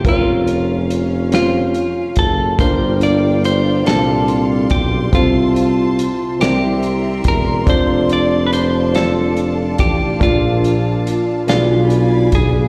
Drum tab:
HH |xxxxxx|xxxxxx|xxxxxx|xxxxxx|
SD |---o--|---o--|---o--|---o--|
BD |o----o|o----o|o----o|o----o|

HH |xxxxxx|
SD |---o--|
BD |o----o|